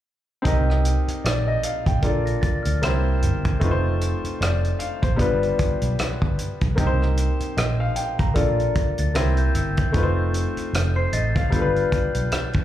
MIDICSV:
0, 0, Header, 1, 6, 480
1, 0, Start_track
1, 0, Tempo, 790514
1, 274, Time_signature, 4, 2, 24, 8
1, 7678, End_track
2, 0, Start_track
2, 0, Title_t, "Glockenspiel"
2, 0, Program_c, 0, 9
2, 1370, Note_on_c, 0, 94, 65
2, 1467, Note_off_c, 0, 94, 0
2, 1467, Note_on_c, 0, 93, 82
2, 1596, Note_on_c, 0, 89, 68
2, 1602, Note_off_c, 0, 93, 0
2, 1832, Note_off_c, 0, 89, 0
2, 5460, Note_on_c, 0, 93, 66
2, 5553, Note_off_c, 0, 93, 0
2, 5560, Note_on_c, 0, 94, 70
2, 5690, Note_off_c, 0, 94, 0
2, 5694, Note_on_c, 0, 91, 69
2, 5790, Note_off_c, 0, 91, 0
2, 5798, Note_on_c, 0, 88, 61
2, 5929, Note_off_c, 0, 88, 0
2, 5938, Note_on_c, 0, 91, 60
2, 6165, Note_off_c, 0, 91, 0
2, 6656, Note_on_c, 0, 96, 74
2, 6751, Note_off_c, 0, 96, 0
2, 6758, Note_on_c, 0, 93, 87
2, 6986, Note_off_c, 0, 93, 0
2, 6993, Note_on_c, 0, 91, 70
2, 7127, Note_off_c, 0, 91, 0
2, 7140, Note_on_c, 0, 89, 61
2, 7678, Note_off_c, 0, 89, 0
2, 7678, End_track
3, 0, Start_track
3, 0, Title_t, "Grand piano"
3, 0, Program_c, 1, 0
3, 256, Note_on_c, 1, 60, 76
3, 264, Note_on_c, 1, 63, 65
3, 272, Note_on_c, 1, 67, 68
3, 279, Note_on_c, 1, 70, 65
3, 288, Note_on_c, 1, 75, 78
3, 390, Control_c, 1, 64, 127
3, 751, Note_off_c, 1, 75, 0
3, 755, Note_on_c, 1, 74, 61
3, 887, Note_off_c, 1, 74, 0
3, 896, Note_on_c, 1, 75, 68
3, 990, Note_off_c, 1, 75, 0
3, 998, Note_on_c, 1, 77, 58
3, 1128, Note_off_c, 1, 77, 0
3, 1135, Note_on_c, 1, 79, 67
3, 1205, Note_off_c, 1, 60, 0
3, 1210, Note_off_c, 1, 63, 0
3, 1213, Note_off_c, 1, 67, 0
3, 1217, Note_off_c, 1, 70, 0
3, 1229, Note_on_c, 1, 58, 63
3, 1233, Note_on_c, 1, 62, 66
3, 1236, Note_on_c, 1, 65, 59
3, 1240, Control_c, 1, 64, 0
3, 1240, Note_on_c, 1, 69, 63
3, 1243, Note_on_c, 1, 74, 71
3, 1350, Control_c, 1, 64, 127
3, 1362, Note_off_c, 1, 79, 0
3, 1702, Note_off_c, 1, 58, 0
3, 1711, Note_on_c, 1, 58, 69
3, 1713, Note_off_c, 1, 62, 0
3, 1715, Note_off_c, 1, 65, 0
3, 1717, Note_off_c, 1, 69, 0
3, 1717, Note_on_c, 1, 60, 57
3, 1718, Note_off_c, 1, 74, 0
3, 1718, Note_on_c, 1, 64, 59
3, 1720, Control_c, 1, 64, 0
3, 1721, Note_on_c, 1, 67, 57
3, 1727, Note_on_c, 1, 72, 77
3, 1825, Control_c, 1, 64, 127
3, 2182, Note_off_c, 1, 60, 0
3, 2184, Note_on_c, 1, 57, 72
3, 2191, Note_on_c, 1, 60, 68
3, 2192, Note_off_c, 1, 58, 0
3, 2196, Note_off_c, 1, 64, 0
3, 2197, Note_off_c, 1, 67, 0
3, 2200, Note_off_c, 1, 72, 0
3, 2200, Control_c, 1, 64, 0
3, 2200, Note_on_c, 1, 63, 65
3, 2207, Note_on_c, 1, 65, 66
3, 2215, Note_on_c, 1, 71, 65
3, 2250, Note_off_c, 1, 71, 0
3, 2255, Note_on_c, 1, 72, 84
3, 2319, Control_c, 1, 64, 127
3, 2677, Note_on_c, 1, 74, 59
3, 2695, Note_off_c, 1, 72, 0
3, 2904, Note_off_c, 1, 74, 0
3, 2910, Note_on_c, 1, 77, 64
3, 3044, Note_off_c, 1, 77, 0
3, 3050, Note_on_c, 1, 72, 68
3, 3130, Note_off_c, 1, 57, 0
3, 3133, Note_off_c, 1, 60, 0
3, 3135, Note_on_c, 1, 55, 76
3, 3138, Note_off_c, 1, 63, 0
3, 3141, Note_off_c, 1, 65, 0
3, 3142, Note_on_c, 1, 59, 64
3, 3148, Note_on_c, 1, 62, 68
3, 3158, Note_on_c, 1, 65, 59
3, 3162, Control_c, 1, 64, 0
3, 3165, Note_on_c, 1, 71, 72
3, 3263, Control_c, 1, 64, 127
3, 3279, Note_off_c, 1, 72, 0
3, 4085, Note_off_c, 1, 55, 0
3, 4088, Note_off_c, 1, 59, 0
3, 4092, Note_off_c, 1, 62, 0
3, 4097, Note_off_c, 1, 65, 0
3, 4100, Note_off_c, 1, 71, 0
3, 4101, Note_on_c, 1, 58, 72
3, 4109, Note_on_c, 1, 60, 71
3, 4117, Note_on_c, 1, 63, 70
3, 4122, Control_c, 1, 64, 0
3, 4124, Note_on_c, 1, 67, 63
3, 4129, Note_on_c, 1, 70, 64
3, 4167, Note_off_c, 1, 70, 0
3, 4170, Note_on_c, 1, 72, 77
3, 4212, Control_c, 1, 64, 127
3, 4596, Note_on_c, 1, 75, 54
3, 4727, Note_off_c, 1, 75, 0
3, 4737, Note_on_c, 1, 77, 68
3, 4831, Note_off_c, 1, 77, 0
3, 4832, Note_on_c, 1, 79, 67
3, 4965, Note_off_c, 1, 79, 0
3, 4973, Note_on_c, 1, 82, 61
3, 5049, Note_off_c, 1, 58, 0
3, 5053, Note_off_c, 1, 60, 0
3, 5057, Note_off_c, 1, 63, 0
3, 5060, Note_off_c, 1, 67, 0
3, 5064, Note_on_c, 1, 58, 67
3, 5069, Note_on_c, 1, 62, 63
3, 5073, Note_on_c, 1, 65, 62
3, 5076, Note_on_c, 1, 69, 67
3, 5079, Note_on_c, 1, 74, 72
3, 5082, Control_c, 1, 64, 0
3, 5083, Note_off_c, 1, 72, 0
3, 5190, Control_c, 1, 64, 127
3, 5201, Note_off_c, 1, 82, 0
3, 5542, Note_off_c, 1, 58, 0
3, 5551, Note_on_c, 1, 58, 67
3, 5552, Note_off_c, 1, 62, 0
3, 5554, Note_off_c, 1, 65, 0
3, 5555, Note_off_c, 1, 69, 0
3, 5556, Note_on_c, 1, 60, 67
3, 5557, Note_off_c, 1, 74, 0
3, 5559, Note_on_c, 1, 64, 66
3, 5560, Note_on_c, 1, 67, 58
3, 5562, Control_c, 1, 64, 0
3, 5566, Note_on_c, 1, 72, 65
3, 5685, Control_c, 1, 64, 127
3, 6020, Note_off_c, 1, 60, 0
3, 6023, Note_on_c, 1, 57, 72
3, 6029, Note_on_c, 1, 60, 71
3, 6033, Note_off_c, 1, 58, 0
3, 6036, Note_on_c, 1, 63, 62
3, 6037, Note_off_c, 1, 64, 0
3, 6038, Note_off_c, 1, 67, 0
3, 6041, Note_off_c, 1, 72, 0
3, 6042, Note_on_c, 1, 65, 65
3, 6043, Control_c, 1, 64, 0
3, 6052, Note_on_c, 1, 71, 69
3, 6089, Note_off_c, 1, 71, 0
3, 6090, Note_on_c, 1, 72, 78
3, 6156, Control_c, 1, 64, 127
3, 6534, Note_off_c, 1, 72, 0
3, 6654, Note_on_c, 1, 72, 61
3, 6750, Note_off_c, 1, 72, 0
3, 6759, Note_on_c, 1, 75, 58
3, 6890, Note_off_c, 1, 75, 0
3, 6894, Note_on_c, 1, 77, 64
3, 6971, Note_off_c, 1, 57, 0
3, 6974, Note_off_c, 1, 60, 0
3, 6978, Note_off_c, 1, 63, 0
3, 6981, Note_off_c, 1, 65, 0
3, 6985, Note_on_c, 1, 55, 67
3, 6994, Note_on_c, 1, 59, 56
3, 6998, Note_on_c, 1, 62, 55
3, 7005, Control_c, 1, 64, 0
3, 7008, Note_on_c, 1, 65, 65
3, 7016, Note_on_c, 1, 69, 58
3, 7052, Note_off_c, 1, 69, 0
3, 7054, Note_on_c, 1, 71, 82
3, 7096, Control_c, 1, 64, 127
3, 7123, Note_off_c, 1, 77, 0
3, 7678, Note_off_c, 1, 55, 0
3, 7678, Note_off_c, 1, 59, 0
3, 7678, Note_off_c, 1, 62, 0
3, 7678, Note_off_c, 1, 65, 0
3, 7678, Note_off_c, 1, 71, 0
3, 7678, End_track
4, 0, Start_track
4, 0, Title_t, "Fingered electric bass"
4, 0, Program_c, 2, 33
4, 275, Note_on_c, 2, 36, 103
4, 584, Note_off_c, 2, 36, 0
4, 756, Note_on_c, 2, 34, 81
4, 951, Note_off_c, 2, 34, 0
4, 1132, Note_on_c, 2, 33, 80
4, 1215, Note_off_c, 2, 33, 0
4, 1232, Note_on_c, 2, 34, 85
4, 1429, Note_off_c, 2, 34, 0
4, 1613, Note_on_c, 2, 38, 79
4, 1695, Note_off_c, 2, 38, 0
4, 1715, Note_on_c, 2, 36, 81
4, 1958, Note_on_c, 2, 31, 95
4, 1967, Note_off_c, 2, 36, 0
4, 2152, Note_off_c, 2, 31, 0
4, 2194, Note_on_c, 2, 29, 106
4, 2504, Note_off_c, 2, 29, 0
4, 2675, Note_on_c, 2, 29, 86
4, 2870, Note_off_c, 2, 29, 0
4, 3052, Note_on_c, 2, 33, 76
4, 3135, Note_off_c, 2, 33, 0
4, 3154, Note_on_c, 2, 31, 92
4, 3350, Note_off_c, 2, 31, 0
4, 3534, Note_on_c, 2, 35, 85
4, 3616, Note_off_c, 2, 35, 0
4, 3774, Note_on_c, 2, 31, 81
4, 3856, Note_off_c, 2, 31, 0
4, 4017, Note_on_c, 2, 35, 89
4, 4098, Note_off_c, 2, 35, 0
4, 4116, Note_on_c, 2, 36, 100
4, 4425, Note_off_c, 2, 36, 0
4, 4597, Note_on_c, 2, 34, 92
4, 4792, Note_off_c, 2, 34, 0
4, 4974, Note_on_c, 2, 33, 84
4, 5056, Note_off_c, 2, 33, 0
4, 5076, Note_on_c, 2, 34, 100
4, 5272, Note_off_c, 2, 34, 0
4, 5458, Note_on_c, 2, 38, 81
4, 5538, Note_off_c, 2, 38, 0
4, 5557, Note_on_c, 2, 36, 90
4, 5752, Note_off_c, 2, 36, 0
4, 5798, Note_on_c, 2, 31, 91
4, 5993, Note_off_c, 2, 31, 0
4, 6038, Note_on_c, 2, 29, 114
4, 6347, Note_off_c, 2, 29, 0
4, 6516, Note_on_c, 2, 29, 92
4, 6712, Note_off_c, 2, 29, 0
4, 6757, Note_on_c, 2, 33, 76
4, 6871, Note_off_c, 2, 33, 0
4, 6996, Note_on_c, 2, 31, 94
4, 7193, Note_off_c, 2, 31, 0
4, 7378, Note_on_c, 2, 35, 74
4, 7460, Note_off_c, 2, 35, 0
4, 7618, Note_on_c, 2, 31, 83
4, 7678, Note_off_c, 2, 31, 0
4, 7678, End_track
5, 0, Start_track
5, 0, Title_t, "Muted fingered electric bass strokes"
5, 656, Note_on_c, 9, 29, 38
5, 716, Note_off_c, 9, 29, 0
5, 1475, Note_on_c, 9, 29, 42
5, 1536, Note_off_c, 9, 29, 0
5, 2577, Note_on_c, 9, 29, 43
5, 2638, Note_off_c, 9, 29, 0
5, 3396, Note_on_c, 9, 29, 45
5, 3457, Note_off_c, 9, 29, 0
5, 3635, Note_on_c, 9, 29, 45
5, 3695, Note_off_c, 9, 29, 0
5, 4496, Note_on_c, 9, 29, 44
5, 4556, Note_off_c, 9, 29, 0
5, 6417, Note_on_c, 9, 29, 43
5, 6478, Note_off_c, 9, 29, 0
5, 7482, Note_on_c, 9, 29, 39
5, 7543, Note_off_c, 9, 29, 0
5, 7678, End_track
6, 0, Start_track
6, 0, Title_t, "Drums"
6, 274, Note_on_c, 9, 42, 81
6, 275, Note_on_c, 9, 36, 90
6, 335, Note_off_c, 9, 36, 0
6, 335, Note_off_c, 9, 42, 0
6, 425, Note_on_c, 9, 37, 33
6, 486, Note_off_c, 9, 37, 0
6, 515, Note_on_c, 9, 42, 67
6, 576, Note_off_c, 9, 42, 0
6, 658, Note_on_c, 9, 42, 45
6, 718, Note_off_c, 9, 42, 0
6, 761, Note_on_c, 9, 42, 86
6, 767, Note_on_c, 9, 37, 89
6, 822, Note_off_c, 9, 42, 0
6, 828, Note_off_c, 9, 37, 0
6, 991, Note_on_c, 9, 42, 67
6, 1051, Note_off_c, 9, 42, 0
6, 1132, Note_on_c, 9, 36, 94
6, 1136, Note_on_c, 9, 42, 46
6, 1193, Note_off_c, 9, 36, 0
6, 1196, Note_off_c, 9, 42, 0
6, 1229, Note_on_c, 9, 42, 87
6, 1232, Note_on_c, 9, 36, 80
6, 1290, Note_off_c, 9, 42, 0
6, 1292, Note_off_c, 9, 36, 0
6, 1377, Note_on_c, 9, 42, 34
6, 1438, Note_off_c, 9, 42, 0
6, 1473, Note_on_c, 9, 42, 63
6, 1475, Note_on_c, 9, 36, 87
6, 1534, Note_off_c, 9, 42, 0
6, 1535, Note_off_c, 9, 36, 0
6, 1610, Note_on_c, 9, 42, 58
6, 1671, Note_off_c, 9, 42, 0
6, 1716, Note_on_c, 9, 42, 75
6, 1722, Note_on_c, 9, 37, 101
6, 1776, Note_off_c, 9, 42, 0
6, 1782, Note_off_c, 9, 37, 0
6, 1958, Note_on_c, 9, 42, 60
6, 2019, Note_off_c, 9, 42, 0
6, 2093, Note_on_c, 9, 42, 46
6, 2096, Note_on_c, 9, 36, 85
6, 2154, Note_off_c, 9, 42, 0
6, 2156, Note_off_c, 9, 36, 0
6, 2193, Note_on_c, 9, 42, 94
6, 2195, Note_on_c, 9, 36, 97
6, 2254, Note_off_c, 9, 42, 0
6, 2255, Note_off_c, 9, 36, 0
6, 2437, Note_on_c, 9, 42, 66
6, 2497, Note_off_c, 9, 42, 0
6, 2578, Note_on_c, 9, 42, 44
6, 2638, Note_off_c, 9, 42, 0
6, 2682, Note_on_c, 9, 42, 83
6, 2688, Note_on_c, 9, 37, 94
6, 2743, Note_off_c, 9, 42, 0
6, 2749, Note_off_c, 9, 37, 0
6, 2820, Note_on_c, 9, 42, 30
6, 2881, Note_off_c, 9, 42, 0
6, 2913, Note_on_c, 9, 42, 65
6, 2973, Note_off_c, 9, 42, 0
6, 3053, Note_on_c, 9, 36, 92
6, 3058, Note_on_c, 9, 42, 47
6, 3114, Note_off_c, 9, 36, 0
6, 3119, Note_off_c, 9, 42, 0
6, 3152, Note_on_c, 9, 42, 74
6, 3153, Note_on_c, 9, 36, 72
6, 3213, Note_off_c, 9, 42, 0
6, 3214, Note_off_c, 9, 36, 0
6, 3296, Note_on_c, 9, 42, 31
6, 3357, Note_off_c, 9, 42, 0
6, 3393, Note_on_c, 9, 42, 68
6, 3396, Note_on_c, 9, 36, 82
6, 3454, Note_off_c, 9, 42, 0
6, 3457, Note_off_c, 9, 36, 0
6, 3531, Note_on_c, 9, 42, 52
6, 3592, Note_off_c, 9, 42, 0
6, 3636, Note_on_c, 9, 42, 84
6, 3642, Note_on_c, 9, 37, 89
6, 3696, Note_off_c, 9, 42, 0
6, 3703, Note_off_c, 9, 37, 0
6, 3776, Note_on_c, 9, 36, 77
6, 3836, Note_off_c, 9, 36, 0
6, 3878, Note_on_c, 9, 42, 65
6, 3938, Note_off_c, 9, 42, 0
6, 4014, Note_on_c, 9, 42, 43
6, 4017, Note_on_c, 9, 36, 77
6, 4075, Note_off_c, 9, 42, 0
6, 4078, Note_off_c, 9, 36, 0
6, 4115, Note_on_c, 9, 42, 84
6, 4116, Note_on_c, 9, 36, 103
6, 4175, Note_off_c, 9, 42, 0
6, 4177, Note_off_c, 9, 36, 0
6, 4263, Note_on_c, 9, 37, 26
6, 4324, Note_off_c, 9, 37, 0
6, 4356, Note_on_c, 9, 42, 70
6, 4417, Note_off_c, 9, 42, 0
6, 4495, Note_on_c, 9, 42, 43
6, 4556, Note_off_c, 9, 42, 0
6, 4599, Note_on_c, 9, 42, 81
6, 4605, Note_on_c, 9, 37, 93
6, 4660, Note_off_c, 9, 42, 0
6, 4665, Note_off_c, 9, 37, 0
6, 4832, Note_on_c, 9, 42, 65
6, 4893, Note_off_c, 9, 42, 0
6, 4975, Note_on_c, 9, 36, 92
6, 4977, Note_on_c, 9, 42, 45
6, 5035, Note_off_c, 9, 36, 0
6, 5037, Note_off_c, 9, 42, 0
6, 5073, Note_on_c, 9, 42, 85
6, 5075, Note_on_c, 9, 36, 77
6, 5134, Note_off_c, 9, 42, 0
6, 5136, Note_off_c, 9, 36, 0
6, 5219, Note_on_c, 9, 42, 33
6, 5280, Note_off_c, 9, 42, 0
6, 5315, Note_on_c, 9, 42, 73
6, 5317, Note_on_c, 9, 36, 88
6, 5376, Note_off_c, 9, 42, 0
6, 5378, Note_off_c, 9, 36, 0
6, 5451, Note_on_c, 9, 42, 51
6, 5512, Note_off_c, 9, 42, 0
6, 5556, Note_on_c, 9, 42, 85
6, 5562, Note_on_c, 9, 37, 94
6, 5616, Note_off_c, 9, 42, 0
6, 5622, Note_off_c, 9, 37, 0
6, 5689, Note_on_c, 9, 42, 33
6, 5749, Note_off_c, 9, 42, 0
6, 5797, Note_on_c, 9, 42, 65
6, 5858, Note_off_c, 9, 42, 0
6, 5933, Note_on_c, 9, 42, 48
6, 5938, Note_on_c, 9, 36, 79
6, 5994, Note_off_c, 9, 42, 0
6, 5999, Note_off_c, 9, 36, 0
6, 6036, Note_on_c, 9, 42, 89
6, 6038, Note_on_c, 9, 36, 95
6, 6096, Note_off_c, 9, 42, 0
6, 6099, Note_off_c, 9, 36, 0
6, 6279, Note_on_c, 9, 42, 63
6, 6339, Note_off_c, 9, 42, 0
6, 6418, Note_on_c, 9, 42, 47
6, 6479, Note_off_c, 9, 42, 0
6, 6523, Note_on_c, 9, 42, 87
6, 6529, Note_on_c, 9, 37, 87
6, 6584, Note_off_c, 9, 42, 0
6, 6590, Note_off_c, 9, 37, 0
6, 6756, Note_on_c, 9, 42, 66
6, 6817, Note_off_c, 9, 42, 0
6, 6897, Note_on_c, 9, 36, 86
6, 6902, Note_on_c, 9, 42, 44
6, 6957, Note_off_c, 9, 36, 0
6, 6963, Note_off_c, 9, 42, 0
6, 6997, Note_on_c, 9, 36, 74
6, 6997, Note_on_c, 9, 42, 83
6, 7057, Note_off_c, 9, 42, 0
6, 7058, Note_off_c, 9, 36, 0
6, 7142, Note_on_c, 9, 42, 31
6, 7203, Note_off_c, 9, 42, 0
6, 7239, Note_on_c, 9, 42, 64
6, 7240, Note_on_c, 9, 36, 82
6, 7299, Note_off_c, 9, 42, 0
6, 7300, Note_off_c, 9, 36, 0
6, 7374, Note_on_c, 9, 42, 55
6, 7435, Note_off_c, 9, 42, 0
6, 7478, Note_on_c, 9, 42, 90
6, 7484, Note_on_c, 9, 37, 92
6, 7539, Note_off_c, 9, 42, 0
6, 7545, Note_off_c, 9, 37, 0
6, 7610, Note_on_c, 9, 42, 30
6, 7618, Note_on_c, 9, 36, 85
6, 7670, Note_off_c, 9, 42, 0
6, 7678, Note_off_c, 9, 36, 0
6, 7678, End_track
0, 0, End_of_file